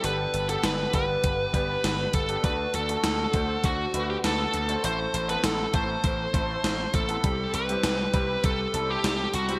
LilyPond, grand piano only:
\new Staff \with { instrumentName = "Grand piano" } { \time 4/4 \key g \major \tempo 4 = 100 <b d' g' a'>8. <b d' g' a'>8. <b d' g' b'>4 <b d' g' b'>4~ <b d' g' b'>16 <b d' g' a'>16 | <a d' fis' a'>8. <a d' fis' a'>8. <a d' fis' c''>4 <a d' fis' b'>4~ <a d' fis' b'>16 <a d' fis' c''>16 | <a c' e' a'>8. <b c' e' a'>8. <a c' e' a'>4 <a c' e' a'>4~ <a c' e' a'>16 <b c' e' a'>16 | <g c' e' g'>8. <g c' e' g'>8. <g c' e' g'>4 <g c' e' a'>4~ <g c' e' a'>16 <g c' e' g'>16 | }